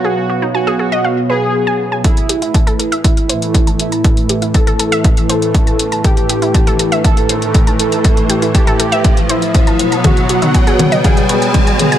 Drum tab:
HH |----------------|xxxxxxxxxxxxxxxx|xxxxxxxxxxxxxxxx|xxxxxxxxxxxxxxxx|
T2 |----------------|----------------|----------------|----------------|
CG |----------------|----------------|----------------|----------------|
BD |----------------|o---o---o---o---|o---o---o---o---|o---o---o---o---|

HH |xxxxxxxxxxxxxxxx|xxxxxxxxxxxxxxxx|
T2 |----------------|o--o--o-o-----o-|
CG |----------------|O-----O-----O---|
BD |o---o---o---o---|o---o---o---o---|